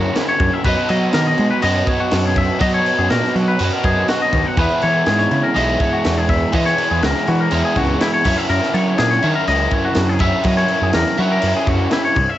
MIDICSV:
0, 0, Header, 1, 5, 480
1, 0, Start_track
1, 0, Key_signature, 5, "major"
1, 0, Tempo, 490597
1, 626, Time_signature, 4, 2, 24, 8
1, 12114, End_track
2, 0, Start_track
2, 0, Title_t, "Clean electric guitar"
2, 0, Program_c, 0, 27
2, 0, Note_on_c, 0, 66, 90
2, 158, Note_off_c, 0, 66, 0
2, 158, Note_on_c, 0, 64, 77
2, 272, Note_off_c, 0, 64, 0
2, 281, Note_on_c, 0, 73, 69
2, 521, Note_off_c, 0, 73, 0
2, 521, Note_on_c, 0, 76, 71
2, 634, Note_off_c, 0, 76, 0
2, 638, Note_on_c, 0, 71, 96
2, 870, Note_off_c, 0, 71, 0
2, 870, Note_on_c, 0, 75, 72
2, 1110, Note_off_c, 0, 75, 0
2, 1117, Note_on_c, 0, 70, 88
2, 1233, Note_off_c, 0, 70, 0
2, 1243, Note_on_c, 0, 75, 67
2, 1470, Note_off_c, 0, 75, 0
2, 1474, Note_on_c, 0, 71, 78
2, 1586, Note_off_c, 0, 71, 0
2, 1590, Note_on_c, 0, 75, 87
2, 1832, Note_off_c, 0, 75, 0
2, 1832, Note_on_c, 0, 73, 90
2, 1952, Note_off_c, 0, 73, 0
2, 1958, Note_on_c, 0, 66, 80
2, 2202, Note_off_c, 0, 66, 0
2, 2202, Note_on_c, 0, 68, 79
2, 2318, Note_off_c, 0, 68, 0
2, 2327, Note_on_c, 0, 76, 80
2, 2551, Note_off_c, 0, 76, 0
2, 2555, Note_on_c, 0, 75, 105
2, 2675, Note_off_c, 0, 75, 0
2, 2682, Note_on_c, 0, 73, 84
2, 2919, Note_off_c, 0, 73, 0
2, 2919, Note_on_c, 0, 68, 74
2, 3033, Note_off_c, 0, 68, 0
2, 3037, Note_on_c, 0, 70, 76
2, 3281, Note_off_c, 0, 70, 0
2, 3281, Note_on_c, 0, 66, 75
2, 3399, Note_off_c, 0, 66, 0
2, 3404, Note_on_c, 0, 71, 78
2, 3645, Note_off_c, 0, 71, 0
2, 3645, Note_on_c, 0, 70, 76
2, 3761, Note_off_c, 0, 70, 0
2, 3765, Note_on_c, 0, 68, 85
2, 3998, Note_off_c, 0, 68, 0
2, 4002, Note_on_c, 0, 66, 83
2, 4120, Note_off_c, 0, 66, 0
2, 4129, Note_on_c, 0, 75, 79
2, 4367, Note_off_c, 0, 75, 0
2, 4367, Note_on_c, 0, 78, 74
2, 4483, Note_off_c, 0, 78, 0
2, 4490, Note_on_c, 0, 71, 89
2, 4723, Note_on_c, 0, 73, 65
2, 4725, Note_off_c, 0, 71, 0
2, 4957, Note_on_c, 0, 68, 89
2, 4961, Note_off_c, 0, 73, 0
2, 5077, Note_on_c, 0, 73, 74
2, 5078, Note_off_c, 0, 68, 0
2, 5315, Note_on_c, 0, 70, 75
2, 5318, Note_off_c, 0, 73, 0
2, 5434, Note_on_c, 0, 75, 92
2, 5438, Note_off_c, 0, 70, 0
2, 5679, Note_off_c, 0, 75, 0
2, 5679, Note_on_c, 0, 73, 88
2, 5799, Note_off_c, 0, 73, 0
2, 5802, Note_on_c, 0, 66, 69
2, 6041, Note_off_c, 0, 66, 0
2, 6041, Note_on_c, 0, 68, 73
2, 6159, Note_on_c, 0, 76, 80
2, 6161, Note_off_c, 0, 68, 0
2, 6394, Note_off_c, 0, 76, 0
2, 6394, Note_on_c, 0, 75, 96
2, 6512, Note_off_c, 0, 75, 0
2, 6515, Note_on_c, 0, 73, 77
2, 6757, Note_off_c, 0, 73, 0
2, 6760, Note_on_c, 0, 68, 71
2, 6876, Note_off_c, 0, 68, 0
2, 6876, Note_on_c, 0, 70, 79
2, 7117, Note_off_c, 0, 70, 0
2, 7124, Note_on_c, 0, 66, 71
2, 7241, Note_off_c, 0, 66, 0
2, 7246, Note_on_c, 0, 70, 83
2, 7481, Note_off_c, 0, 70, 0
2, 7485, Note_on_c, 0, 68, 83
2, 7601, Note_off_c, 0, 68, 0
2, 7604, Note_on_c, 0, 66, 87
2, 7840, Note_off_c, 0, 66, 0
2, 7845, Note_on_c, 0, 64, 95
2, 7957, Note_off_c, 0, 64, 0
2, 7961, Note_on_c, 0, 73, 75
2, 8196, Note_off_c, 0, 73, 0
2, 8196, Note_on_c, 0, 76, 73
2, 8308, Note_off_c, 0, 76, 0
2, 8312, Note_on_c, 0, 70, 90
2, 8552, Note_off_c, 0, 70, 0
2, 8552, Note_on_c, 0, 73, 70
2, 8789, Note_on_c, 0, 68, 97
2, 8792, Note_off_c, 0, 73, 0
2, 8909, Note_on_c, 0, 73, 68
2, 8911, Note_off_c, 0, 68, 0
2, 9148, Note_off_c, 0, 73, 0
2, 9152, Note_on_c, 0, 70, 76
2, 9270, Note_off_c, 0, 70, 0
2, 9274, Note_on_c, 0, 75, 93
2, 9515, Note_off_c, 0, 75, 0
2, 9515, Note_on_c, 0, 73, 79
2, 9632, Note_off_c, 0, 73, 0
2, 9636, Note_on_c, 0, 66, 78
2, 9875, Note_off_c, 0, 66, 0
2, 9875, Note_on_c, 0, 68, 71
2, 9983, Note_on_c, 0, 76, 82
2, 9992, Note_off_c, 0, 68, 0
2, 10228, Note_off_c, 0, 76, 0
2, 10228, Note_on_c, 0, 75, 92
2, 10340, Note_off_c, 0, 75, 0
2, 10344, Note_on_c, 0, 73, 66
2, 10585, Note_off_c, 0, 73, 0
2, 10597, Note_on_c, 0, 68, 73
2, 10701, Note_off_c, 0, 68, 0
2, 10705, Note_on_c, 0, 70, 80
2, 10945, Note_off_c, 0, 70, 0
2, 10958, Note_on_c, 0, 66, 73
2, 11071, Note_off_c, 0, 66, 0
2, 11072, Note_on_c, 0, 70, 82
2, 11308, Note_off_c, 0, 70, 0
2, 11315, Note_on_c, 0, 68, 71
2, 11429, Note_off_c, 0, 68, 0
2, 11429, Note_on_c, 0, 66, 84
2, 11666, Note_off_c, 0, 66, 0
2, 11668, Note_on_c, 0, 64, 80
2, 11783, Note_off_c, 0, 64, 0
2, 11787, Note_on_c, 0, 73, 69
2, 12028, Note_off_c, 0, 73, 0
2, 12028, Note_on_c, 0, 76, 79
2, 12114, Note_off_c, 0, 76, 0
2, 12114, End_track
3, 0, Start_track
3, 0, Title_t, "Overdriven electric guitar"
3, 0, Program_c, 1, 29
3, 0, Note_on_c, 1, 54, 78
3, 0, Note_on_c, 1, 61, 83
3, 0, Note_on_c, 1, 64, 92
3, 0, Note_on_c, 1, 70, 78
3, 622, Note_off_c, 1, 61, 0
3, 628, Note_off_c, 1, 64, 0
3, 629, Note_off_c, 1, 54, 0
3, 633, Note_on_c, 1, 54, 91
3, 648, Note_on_c, 1, 59, 106
3, 650, Note_on_c, 1, 66, 108
3, 657, Note_off_c, 1, 70, 0
3, 661, Note_on_c, 1, 71, 105
3, 668, Note_on_c, 1, 75, 112
3, 1577, Note_off_c, 1, 54, 0
3, 1581, Note_on_c, 1, 54, 73
3, 1590, Note_off_c, 1, 59, 0
3, 1594, Note_on_c, 1, 59, 92
3, 1595, Note_off_c, 1, 66, 0
3, 1599, Note_on_c, 1, 66, 84
3, 1608, Note_off_c, 1, 71, 0
3, 1612, Note_on_c, 1, 71, 86
3, 1613, Note_off_c, 1, 75, 0
3, 1617, Note_on_c, 1, 75, 94
3, 2531, Note_off_c, 1, 54, 0
3, 2535, Note_on_c, 1, 54, 90
3, 2543, Note_off_c, 1, 59, 0
3, 2547, Note_on_c, 1, 59, 98
3, 2548, Note_off_c, 1, 66, 0
3, 2551, Note_on_c, 1, 66, 109
3, 2553, Note_off_c, 1, 75, 0
3, 2557, Note_off_c, 1, 71, 0
3, 2561, Note_on_c, 1, 71, 101
3, 2568, Note_on_c, 1, 75, 110
3, 3507, Note_off_c, 1, 54, 0
3, 3509, Note_off_c, 1, 75, 0
3, 3510, Note_on_c, 1, 54, 80
3, 3518, Note_off_c, 1, 59, 0
3, 3522, Note_on_c, 1, 59, 89
3, 3528, Note_off_c, 1, 66, 0
3, 3532, Note_on_c, 1, 66, 81
3, 3538, Note_off_c, 1, 71, 0
3, 3542, Note_on_c, 1, 71, 81
3, 3547, Note_on_c, 1, 75, 89
3, 4475, Note_on_c, 1, 52, 96
3, 4478, Note_off_c, 1, 54, 0
3, 4480, Note_off_c, 1, 75, 0
3, 4482, Note_on_c, 1, 56, 88
3, 4486, Note_off_c, 1, 59, 0
3, 4490, Note_on_c, 1, 59, 104
3, 4493, Note_off_c, 1, 66, 0
3, 4497, Note_on_c, 1, 64, 99
3, 4499, Note_off_c, 1, 71, 0
3, 4503, Note_on_c, 1, 68, 106
3, 4507, Note_on_c, 1, 76, 112
3, 5417, Note_off_c, 1, 52, 0
3, 5421, Note_on_c, 1, 52, 77
3, 5426, Note_off_c, 1, 59, 0
3, 5430, Note_off_c, 1, 56, 0
3, 5434, Note_on_c, 1, 56, 85
3, 5438, Note_on_c, 1, 59, 83
3, 5442, Note_off_c, 1, 64, 0
3, 5446, Note_on_c, 1, 64, 85
3, 5448, Note_off_c, 1, 68, 0
3, 5452, Note_off_c, 1, 76, 0
3, 5452, Note_on_c, 1, 68, 93
3, 5456, Note_on_c, 1, 76, 92
3, 6376, Note_off_c, 1, 52, 0
3, 6380, Note_on_c, 1, 52, 102
3, 6384, Note_off_c, 1, 56, 0
3, 6384, Note_off_c, 1, 59, 0
3, 6388, Note_on_c, 1, 56, 87
3, 6398, Note_off_c, 1, 64, 0
3, 6399, Note_on_c, 1, 59, 108
3, 6402, Note_off_c, 1, 68, 0
3, 6402, Note_on_c, 1, 64, 110
3, 6406, Note_on_c, 1, 68, 107
3, 6412, Note_off_c, 1, 76, 0
3, 6416, Note_on_c, 1, 76, 98
3, 7343, Note_off_c, 1, 59, 0
3, 7349, Note_off_c, 1, 52, 0
3, 7353, Note_off_c, 1, 56, 0
3, 7353, Note_on_c, 1, 52, 84
3, 7357, Note_on_c, 1, 56, 85
3, 7364, Note_on_c, 1, 59, 92
3, 7370, Note_off_c, 1, 64, 0
3, 7374, Note_on_c, 1, 64, 82
3, 7375, Note_off_c, 1, 68, 0
3, 7378, Note_off_c, 1, 76, 0
3, 7379, Note_on_c, 1, 68, 95
3, 7381, Note_on_c, 1, 76, 83
3, 8060, Note_off_c, 1, 56, 0
3, 8064, Note_on_c, 1, 54, 94
3, 8065, Note_off_c, 1, 59, 0
3, 8076, Note_on_c, 1, 61, 92
3, 8081, Note_off_c, 1, 64, 0
3, 8085, Note_off_c, 1, 68, 0
3, 8085, Note_on_c, 1, 64, 102
3, 8089, Note_on_c, 1, 70, 99
3, 8093, Note_off_c, 1, 52, 0
3, 8093, Note_off_c, 1, 76, 0
3, 8097, Note_on_c, 1, 76, 121
3, 9024, Note_off_c, 1, 76, 0
3, 9028, Note_on_c, 1, 76, 91
3, 9033, Note_off_c, 1, 70, 0
3, 9037, Note_on_c, 1, 70, 96
3, 9047, Note_off_c, 1, 64, 0
3, 9051, Note_on_c, 1, 64, 80
3, 9052, Note_off_c, 1, 54, 0
3, 9053, Note_off_c, 1, 61, 0
3, 9056, Note_on_c, 1, 54, 83
3, 9057, Note_on_c, 1, 61, 78
3, 9972, Note_off_c, 1, 76, 0
3, 9976, Note_off_c, 1, 54, 0
3, 9980, Note_off_c, 1, 61, 0
3, 9980, Note_on_c, 1, 54, 98
3, 9983, Note_off_c, 1, 64, 0
3, 9992, Note_on_c, 1, 61, 110
3, 10001, Note_on_c, 1, 64, 105
3, 10005, Note_off_c, 1, 70, 0
3, 10009, Note_on_c, 1, 70, 112
3, 10021, Note_on_c, 1, 76, 107
3, 10927, Note_off_c, 1, 54, 0
3, 10928, Note_off_c, 1, 76, 0
3, 10933, Note_off_c, 1, 61, 0
3, 10937, Note_off_c, 1, 64, 0
3, 10938, Note_off_c, 1, 70, 0
3, 10940, Note_on_c, 1, 76, 96
3, 10950, Note_on_c, 1, 70, 78
3, 10957, Note_on_c, 1, 64, 90
3, 10971, Note_on_c, 1, 61, 76
3, 10978, Note_on_c, 1, 54, 81
3, 11887, Note_off_c, 1, 76, 0
3, 11892, Note_off_c, 1, 70, 0
3, 11895, Note_off_c, 1, 64, 0
3, 11902, Note_off_c, 1, 61, 0
3, 11905, Note_off_c, 1, 54, 0
3, 12114, End_track
4, 0, Start_track
4, 0, Title_t, "Picked electric bass"
4, 0, Program_c, 2, 34
4, 391, Note_on_c, 2, 42, 105
4, 481, Note_off_c, 2, 42, 0
4, 635, Note_on_c, 2, 42, 104
4, 724, Note_off_c, 2, 42, 0
4, 879, Note_on_c, 2, 54, 88
4, 1059, Note_off_c, 2, 54, 0
4, 1118, Note_on_c, 2, 51, 103
4, 1298, Note_off_c, 2, 51, 0
4, 1362, Note_on_c, 2, 56, 102
4, 1449, Note_off_c, 2, 56, 0
4, 1599, Note_on_c, 2, 42, 106
4, 1780, Note_off_c, 2, 42, 0
4, 2082, Note_on_c, 2, 42, 88
4, 2446, Note_off_c, 2, 42, 0
4, 2553, Note_on_c, 2, 54, 102
4, 2737, Note_off_c, 2, 54, 0
4, 2922, Note_on_c, 2, 42, 78
4, 3011, Note_off_c, 2, 42, 0
4, 3045, Note_on_c, 2, 46, 89
4, 3133, Note_off_c, 2, 46, 0
4, 3282, Note_on_c, 2, 54, 77
4, 3464, Note_off_c, 2, 54, 0
4, 3524, Note_on_c, 2, 42, 92
4, 3613, Note_off_c, 2, 42, 0
4, 3758, Note_on_c, 2, 42, 101
4, 3941, Note_off_c, 2, 42, 0
4, 4238, Note_on_c, 2, 39, 108
4, 4330, Note_off_c, 2, 39, 0
4, 4472, Note_on_c, 2, 40, 96
4, 4566, Note_off_c, 2, 40, 0
4, 4730, Note_on_c, 2, 52, 88
4, 4909, Note_off_c, 2, 52, 0
4, 4960, Note_on_c, 2, 44, 88
4, 5143, Note_off_c, 2, 44, 0
4, 5198, Note_on_c, 2, 49, 101
4, 5290, Note_off_c, 2, 49, 0
4, 5442, Note_on_c, 2, 35, 93
4, 5624, Note_off_c, 2, 35, 0
4, 5928, Note_on_c, 2, 40, 89
4, 6291, Note_off_c, 2, 40, 0
4, 6397, Note_on_c, 2, 52, 108
4, 6581, Note_off_c, 2, 52, 0
4, 6762, Note_on_c, 2, 40, 80
4, 6853, Note_off_c, 2, 40, 0
4, 6883, Note_on_c, 2, 37, 101
4, 6973, Note_off_c, 2, 37, 0
4, 7128, Note_on_c, 2, 52, 91
4, 7307, Note_off_c, 2, 52, 0
4, 7360, Note_on_c, 2, 40, 91
4, 7451, Note_off_c, 2, 40, 0
4, 7598, Note_on_c, 2, 37, 108
4, 7780, Note_off_c, 2, 37, 0
4, 8079, Note_on_c, 2, 42, 102
4, 8169, Note_off_c, 2, 42, 0
4, 8313, Note_on_c, 2, 42, 93
4, 8405, Note_off_c, 2, 42, 0
4, 8553, Note_on_c, 2, 54, 77
4, 8736, Note_off_c, 2, 54, 0
4, 8798, Note_on_c, 2, 46, 95
4, 8978, Note_off_c, 2, 46, 0
4, 9038, Note_on_c, 2, 51, 96
4, 9127, Note_off_c, 2, 51, 0
4, 9273, Note_on_c, 2, 37, 96
4, 9455, Note_off_c, 2, 37, 0
4, 9749, Note_on_c, 2, 42, 93
4, 10113, Note_off_c, 2, 42, 0
4, 10219, Note_on_c, 2, 54, 104
4, 10404, Note_off_c, 2, 54, 0
4, 10583, Note_on_c, 2, 42, 77
4, 10676, Note_off_c, 2, 42, 0
4, 10706, Note_on_c, 2, 40, 107
4, 10797, Note_off_c, 2, 40, 0
4, 10944, Note_on_c, 2, 54, 96
4, 11127, Note_off_c, 2, 54, 0
4, 11186, Note_on_c, 2, 42, 102
4, 11277, Note_off_c, 2, 42, 0
4, 11418, Note_on_c, 2, 42, 91
4, 11603, Note_off_c, 2, 42, 0
4, 11902, Note_on_c, 2, 36, 109
4, 11994, Note_off_c, 2, 36, 0
4, 12114, End_track
5, 0, Start_track
5, 0, Title_t, "Drums"
5, 150, Note_on_c, 9, 49, 80
5, 158, Note_on_c, 9, 38, 120
5, 248, Note_off_c, 9, 49, 0
5, 256, Note_off_c, 9, 38, 0
5, 387, Note_on_c, 9, 49, 62
5, 390, Note_on_c, 9, 36, 102
5, 485, Note_off_c, 9, 49, 0
5, 488, Note_off_c, 9, 36, 0
5, 627, Note_on_c, 9, 49, 82
5, 630, Note_on_c, 9, 36, 117
5, 725, Note_off_c, 9, 49, 0
5, 728, Note_off_c, 9, 36, 0
5, 867, Note_on_c, 9, 49, 69
5, 965, Note_off_c, 9, 49, 0
5, 1102, Note_on_c, 9, 49, 87
5, 1110, Note_on_c, 9, 38, 111
5, 1200, Note_off_c, 9, 49, 0
5, 1208, Note_off_c, 9, 38, 0
5, 1346, Note_on_c, 9, 49, 64
5, 1444, Note_off_c, 9, 49, 0
5, 1586, Note_on_c, 9, 49, 88
5, 1684, Note_off_c, 9, 49, 0
5, 1831, Note_on_c, 9, 36, 88
5, 1833, Note_on_c, 9, 49, 58
5, 1928, Note_off_c, 9, 36, 0
5, 1930, Note_off_c, 9, 49, 0
5, 2066, Note_on_c, 9, 49, 98
5, 2074, Note_on_c, 9, 38, 113
5, 2164, Note_off_c, 9, 49, 0
5, 2171, Note_off_c, 9, 38, 0
5, 2312, Note_on_c, 9, 36, 94
5, 2314, Note_on_c, 9, 49, 70
5, 2410, Note_off_c, 9, 36, 0
5, 2412, Note_off_c, 9, 49, 0
5, 2548, Note_on_c, 9, 49, 93
5, 2553, Note_on_c, 9, 36, 108
5, 2646, Note_off_c, 9, 49, 0
5, 2651, Note_off_c, 9, 36, 0
5, 2799, Note_on_c, 9, 49, 75
5, 2897, Note_off_c, 9, 49, 0
5, 3033, Note_on_c, 9, 49, 87
5, 3041, Note_on_c, 9, 38, 107
5, 3131, Note_off_c, 9, 49, 0
5, 3139, Note_off_c, 9, 38, 0
5, 3176, Note_on_c, 9, 38, 36
5, 3274, Note_off_c, 9, 38, 0
5, 3283, Note_on_c, 9, 49, 60
5, 3381, Note_off_c, 9, 49, 0
5, 3510, Note_on_c, 9, 49, 91
5, 3608, Note_off_c, 9, 49, 0
5, 3758, Note_on_c, 9, 36, 85
5, 3758, Note_on_c, 9, 49, 63
5, 3856, Note_off_c, 9, 36, 0
5, 3856, Note_off_c, 9, 49, 0
5, 3992, Note_on_c, 9, 49, 90
5, 4000, Note_on_c, 9, 38, 118
5, 4090, Note_off_c, 9, 49, 0
5, 4098, Note_off_c, 9, 38, 0
5, 4235, Note_on_c, 9, 36, 99
5, 4235, Note_on_c, 9, 49, 69
5, 4332, Note_off_c, 9, 49, 0
5, 4333, Note_off_c, 9, 36, 0
5, 4471, Note_on_c, 9, 49, 76
5, 4474, Note_on_c, 9, 36, 116
5, 4569, Note_off_c, 9, 49, 0
5, 4572, Note_off_c, 9, 36, 0
5, 4709, Note_on_c, 9, 49, 68
5, 4807, Note_off_c, 9, 49, 0
5, 4951, Note_on_c, 9, 49, 74
5, 4959, Note_on_c, 9, 38, 103
5, 5049, Note_off_c, 9, 49, 0
5, 5057, Note_off_c, 9, 38, 0
5, 5077, Note_on_c, 9, 38, 35
5, 5175, Note_off_c, 9, 38, 0
5, 5196, Note_on_c, 9, 49, 54
5, 5294, Note_off_c, 9, 49, 0
5, 5439, Note_on_c, 9, 49, 73
5, 5537, Note_off_c, 9, 49, 0
5, 5671, Note_on_c, 9, 49, 58
5, 5676, Note_on_c, 9, 36, 94
5, 5768, Note_off_c, 9, 49, 0
5, 5774, Note_off_c, 9, 36, 0
5, 5913, Note_on_c, 9, 49, 99
5, 5921, Note_on_c, 9, 38, 121
5, 6011, Note_off_c, 9, 49, 0
5, 6019, Note_off_c, 9, 38, 0
5, 6152, Note_on_c, 9, 49, 73
5, 6154, Note_on_c, 9, 36, 92
5, 6250, Note_off_c, 9, 49, 0
5, 6252, Note_off_c, 9, 36, 0
5, 6387, Note_on_c, 9, 49, 87
5, 6393, Note_on_c, 9, 36, 126
5, 6484, Note_off_c, 9, 49, 0
5, 6491, Note_off_c, 9, 36, 0
5, 6519, Note_on_c, 9, 38, 39
5, 6617, Note_off_c, 9, 38, 0
5, 6635, Note_on_c, 9, 49, 73
5, 6733, Note_off_c, 9, 49, 0
5, 6874, Note_on_c, 9, 49, 86
5, 6882, Note_on_c, 9, 38, 106
5, 6972, Note_off_c, 9, 49, 0
5, 6980, Note_off_c, 9, 38, 0
5, 7007, Note_on_c, 9, 38, 34
5, 7105, Note_off_c, 9, 38, 0
5, 7116, Note_on_c, 9, 49, 65
5, 7214, Note_off_c, 9, 49, 0
5, 7346, Note_on_c, 9, 49, 89
5, 7443, Note_off_c, 9, 49, 0
5, 7592, Note_on_c, 9, 49, 71
5, 7595, Note_on_c, 9, 36, 82
5, 7690, Note_off_c, 9, 49, 0
5, 7693, Note_off_c, 9, 36, 0
5, 7834, Note_on_c, 9, 49, 97
5, 7841, Note_on_c, 9, 38, 125
5, 7931, Note_off_c, 9, 49, 0
5, 7939, Note_off_c, 9, 38, 0
5, 8075, Note_on_c, 9, 36, 103
5, 8075, Note_on_c, 9, 49, 118
5, 8172, Note_off_c, 9, 49, 0
5, 8173, Note_off_c, 9, 36, 0
5, 8314, Note_on_c, 9, 49, 79
5, 8412, Note_off_c, 9, 49, 0
5, 8446, Note_on_c, 9, 38, 38
5, 8544, Note_off_c, 9, 38, 0
5, 8557, Note_on_c, 9, 49, 66
5, 8654, Note_off_c, 9, 49, 0
5, 8785, Note_on_c, 9, 49, 82
5, 8793, Note_on_c, 9, 38, 104
5, 8883, Note_off_c, 9, 49, 0
5, 8891, Note_off_c, 9, 38, 0
5, 8920, Note_on_c, 9, 38, 34
5, 9018, Note_off_c, 9, 38, 0
5, 9025, Note_on_c, 9, 49, 59
5, 9123, Note_off_c, 9, 49, 0
5, 9268, Note_on_c, 9, 49, 75
5, 9366, Note_off_c, 9, 49, 0
5, 9498, Note_on_c, 9, 49, 58
5, 9505, Note_on_c, 9, 36, 81
5, 9596, Note_off_c, 9, 49, 0
5, 9603, Note_off_c, 9, 36, 0
5, 9731, Note_on_c, 9, 49, 88
5, 9739, Note_on_c, 9, 38, 118
5, 9829, Note_off_c, 9, 49, 0
5, 9836, Note_off_c, 9, 38, 0
5, 9967, Note_on_c, 9, 49, 67
5, 9981, Note_on_c, 9, 36, 101
5, 10065, Note_off_c, 9, 49, 0
5, 10078, Note_off_c, 9, 36, 0
5, 10209, Note_on_c, 9, 49, 83
5, 10222, Note_on_c, 9, 36, 99
5, 10307, Note_off_c, 9, 49, 0
5, 10320, Note_off_c, 9, 36, 0
5, 10342, Note_on_c, 9, 38, 35
5, 10440, Note_off_c, 9, 38, 0
5, 10451, Note_on_c, 9, 49, 73
5, 10549, Note_off_c, 9, 49, 0
5, 10691, Note_on_c, 9, 49, 91
5, 10699, Note_on_c, 9, 38, 106
5, 10789, Note_off_c, 9, 49, 0
5, 10796, Note_off_c, 9, 38, 0
5, 10825, Note_on_c, 9, 38, 31
5, 10922, Note_off_c, 9, 38, 0
5, 10930, Note_on_c, 9, 49, 59
5, 11028, Note_off_c, 9, 49, 0
5, 11169, Note_on_c, 9, 49, 93
5, 11267, Note_off_c, 9, 49, 0
5, 11413, Note_on_c, 9, 49, 63
5, 11420, Note_on_c, 9, 36, 76
5, 11511, Note_off_c, 9, 49, 0
5, 11517, Note_off_c, 9, 36, 0
5, 11651, Note_on_c, 9, 49, 93
5, 11658, Note_on_c, 9, 38, 127
5, 11748, Note_off_c, 9, 49, 0
5, 11756, Note_off_c, 9, 38, 0
5, 11895, Note_on_c, 9, 49, 70
5, 11901, Note_on_c, 9, 36, 93
5, 11992, Note_off_c, 9, 49, 0
5, 11999, Note_off_c, 9, 36, 0
5, 12114, End_track
0, 0, End_of_file